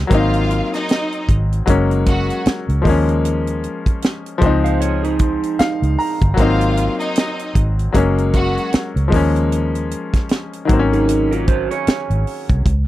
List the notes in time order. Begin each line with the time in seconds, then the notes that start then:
Already playing: F3 G#3 C4 D#4
0.07 G#1 F#3 A#3 F4 F5, kick, closed hi-hat
0.12 C4 D#4
0.34 closed hi-hat
0.51 closed hi-hat
0.74 D#4 D#5, snare, closed hi-hat
0.89 snare, closed hi-hat
1.12 closed hi-hat
1.29 G#1, kick, closed hi-hat
1.52 closed hi-hat
1.66 F#1 F#3 G#3 A#3, kick, closed hi-hat
1.70 C#4
1.91 closed hi-hat
2.06 F#4 F#5, kick, closed hi-hat
2.30 closed hi-hat
2.46 muted fingered electric bass stroke, snare, closed hi-hat
2.69 C#2, closed hi-hat
2.82 D#2 F3 G#3, kick
2.86 A#3 C#4, open hi-hat
3.09 closed hi-hat
3.25 closed hi-hat
3.47 closed hi-hat
3.64 closed hi-hat
3.86 kick, closed hi-hat
4.02 snare, closed hi-hat
4.26 closed hi-hat
4.38 C#2 F3 G#3, kick, closed hi-hat
4.43 C4 D#4
4.64 C5 F5, closed hi-hat
4.81 G#4 C#5, closed hi-hat
5.04 D#4 G#4, closed hi-hat
5.19 kick, closed hi-hat
5.43 closed hi-hat
5.59 F5, muted fingered electric bass stroke, snare, closed hi-hat
5.82 C#2, closed hi-hat
5.99 A#5, open hi-hat
6.22 G1, kick, closed hi-hat
6.34 G#1 F#3 A#3 F4 F5, kick, closed hi-hat
6.39 C4 D#4
6.61 closed hi-hat
6.77 closed hi-hat
7.00 D#4 D#5, closed hi-hat
7.15 snare, closed hi-hat
7.39 closed hi-hat
7.55 G#1, kick, closed hi-hat
7.79 closed hi-hat
7.92 F#1 F#3 G#3 A#3, kick, closed hi-hat
7.97 C#4
8.18 closed hi-hat
8.33 F#4 F#5, kick, closed hi-hat
8.57 closed hi-hat
8.73 muted fingered electric bass stroke, snare, closed hi-hat
8.96 C#2, closed hi-hat
9.08 F3 G#3
9.12 D#2 A#3 C#4, kick, open hi-hat
9.36 closed hi-hat
9.52 closed hi-hat
9.75 closed hi-hat
9.91 closed hi-hat
10.14 kick, snare, closed hi-hat
10.29 snare, closed hi-hat
10.53 closed hi-hat
10.65 G#1 D#3 F#3
10.69 A#3 C4, kick, closed hi-hat
10.79 C#4
10.93 D#4 G#4, closed hi-hat
11.09 closed hi-hat
11.31 F4 A#4, closed hi-hat
11.48 F#4 C5, kick, closed hi-hat
11.71 G#4 C#5, closed hi-hat
11.87 muted fingered electric bass stroke, snare, closed hi-hat
12.10 G#1, closed hi-hat
12.27 open hi-hat
12.49 C2, kick, closed hi-hat
12.66 C#2, kick, closed hi-hat